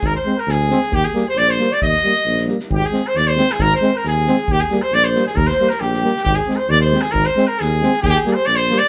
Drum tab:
SD |----o-oo|--o-o-oo|-ooooooo|--o-o-oo|
BD |o-------|o-------|o-------|o-------|

SD |--o-o-oo|--o-o-oo|-ooooooo|--o-o-oo|
BD |o-------|o-------|o-------|o-------|

SD |--o-o-oo|--o-o-oo|
BD |o-------|o-------|